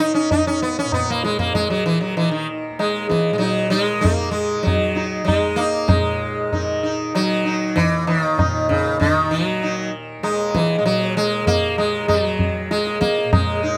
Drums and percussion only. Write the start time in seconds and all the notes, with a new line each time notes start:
0.31 tabla tin, tabla ge
0.92 tabla na, tabla ge
1.24 tabla te
1.39 tabla ge
1.54 tabla tin, tabla ge
2.17 tabla tin
2.80 tabla na
3.11 tabla ke
3.42 tabla tin
4.04 tabla tin, tabla ge
4.67 tabla na, tabla ge
4.97 tabla te
5.28 tabla na, tabla ge
5.59 tabla te
5.89 tabla na, tabla ge
6.53 tabla tin, tabla ge
7.15 tabla na
7.77 tabla tin, tabla ge
8.08 tabla na
8.39 tabla na, tabla ge
8.71 tabla ge
9.01 tabla tin, tabla ge
9.63 tabla tin
10.24 tabla na
10.55 tabla ke
10.86 tabla tin
11.47 tabla tin, tabla ge
11.78 tabla na
12.09 tabla na, tabla ge
12.39 tabla ge
12.71 tabla te
12.87 tabla te
13.02 tabla ke
13.18 tabla te
13.33 tabla na, tabla ge